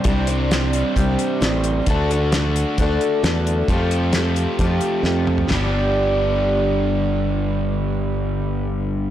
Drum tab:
CC |----------------|----------------|----------------|x---------------|
HH |x-x-x-x-x-x-x-x-|x-x-x-x-x-x-x-x-|x-x-x-x-x-x-----|----------------|
SD |----o-------o---|----o-------o---|----o-------o---|o---------------|
T2 |----------------|----------------|--------------o-|----------------|
FT |----------------|----------------|---------------o|o---------------|
BD |o-------o-------|o-------o-------|o-------o-------|----------------|

CC |----------------|
HH |----------------|
SD |----------------|
T2 |----------------|
FT |----------------|
BD |----------------|